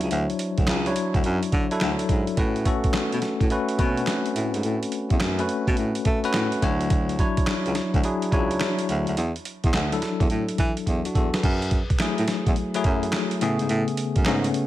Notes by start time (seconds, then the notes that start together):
Already playing: F#3 D4 E4 C5 C#5 E5
0.01 C#2, closed hi-hat
0.11 D2, closed hi-hat
0.30 closed hi-hat
0.39 closed hi-hat
0.58 D2, kick, closed hi-hat
0.67 C#2, snare, clap, closed hi-hat
0.86 F#3 D4 E4 C#5, closed hi-hat
0.96 closed hi-hat
1.14 D2, kick, closed hi-hat
1.24 F#2, closed hi-hat
1.43 closed hi-hat
1.52 D3, kick, closed hi-hat
1.71 F#3 D4 E4 A4, closed hi-hat
1.81 D2, snare, clap, closed hi-hat
1.99 closed hi-hat
2.09 G#2, kick, closed hi-hat
2.27 closed hi-hat
2.37 A2 A3 C#4 F#4 B4, kick, closed hi-hat
2.56 closed hi-hat
2.65 A3 C#4 F#4 A4, kick, closed hi-hat
2.84 kick, closed hi-hat
2.94 snare, clap, closed hi-hat
3.12 B2, closed hi-hat
3.22 snare, closed hi-hat
3.41 A2, kick, closed hi-hat
3.50 A3 C#4 F#4 B4, closed hi-hat
3.69 closed hi-hat
3.78 B2 A3 C4 F#4 B4, kick, closed hi-hat
3.85 C#4
3.97 closed hi-hat
4.07 snare, clap, closed hi-hat
4.26 closed hi-hat
4.35 A2, closed hi-hat
4.54 G#2, closed hi-hat
4.63 A2, closed hi-hat
4.83 closed hi-hat
4.92 closed hi-hat
5.10 E2, kick, closed hi-hat
5.20 F#2, snare, clap, closed hi-hat
5.39 A3 C#4 F#4 B4, closed hi-hat
5.49 closed hi-hat
5.67 B2, kick, closed hi-hat
5.77 A2, closed hi-hat
5.95 closed hi-hat
6.05 A3, kick, closed hi-hat
6.24 A3 C#4 F#4 B4, closed hi-hat
6.34 A2, snare, clap, closed hi-hat
6.52 closed hi-hat
6.62 D2 F#3 D4 E4 C#5, kick, closed hi-hat
6.81 closed hi-hat
6.90 kick, closed hi-hat
7.09 closed hi-hat
7.19 F#3 D4 E4 C#5, kick, closed hi-hat
7.37 kick, closed hi-hat
7.47 snare, clap, closed hi-hat
7.66 C#2, closed hi-hat
7.75 snare, closed hi-hat
7.94 D2, kick, closed hi-hat
8.04 F#3 D4 E4 G#4, closed hi-hat
8.22 closed hi-hat
8.32 C#2 F#3 D4 E4 C#5, kick, closed hi-hat
8.51 closed hi-hat
8.61 snare, clap, closed hi-hat
8.79 closed hi-hat
8.89 D2, closed hi-hat
9.07 D2, closed hi-hat
9.17 E2, closed hi-hat
9.36 closed hi-hat
9.45 closed hi-hat
9.64 E2, kick, closed hi-hat
9.74 D2, snare, clap, closed hi-hat
9.92 F#3 D4 E4 A4, closed hi-hat
10.02 snare, closed hi-hat
10.20 E2, kick, closed hi-hat
10.30 A2, closed hi-hat
10.49 closed hi-hat
10.58 E3, kick, closed hi-hat
10.77 closed hi-hat
10.87 E2, kick, closed hi-hat
11.05 D4 F#4, closed hi-hat
11.15 E2 F#4 A4, kick, closed hi-hat
11.34 G#4 B4, snare, closed hi-hat
11.43 F#2, kick, closed hi-hat, crash
11.62 closed hi-hat
11.71 kick, closed hi-hat
11.90 kick, closed hi-hat
12.00 F#3 A3 E4 G#4, snare, clap, closed hi-hat
12.18 A2, closed hi-hat
12.28 snare, closed hi-hat
12.46 E2, kick, closed hi-hat
12.56 closed hi-hat
12.74 F#3 A3 E4 G#4, closed hi-hat
12.84 F#2, kick, closed hi-hat
13.03 closed hi-hat
13.13 snare, clap, closed hi-hat
13.31 closed hi-hat
13.41 A2 C#3 A3 B3 G#4, closed hi-hat
13.59 G#2, closed hi-hat
13.69 A2, closed hi-hat
13.88 closed hi-hat
13.97 closed hi-hat
14.16 F#2, kick, closed hi-hat
14.25 G#2 C#3 A3 B3 C#4, snare, clap, closed hi-hat
14.44 closed hi-hat
14.54 closed hi-hat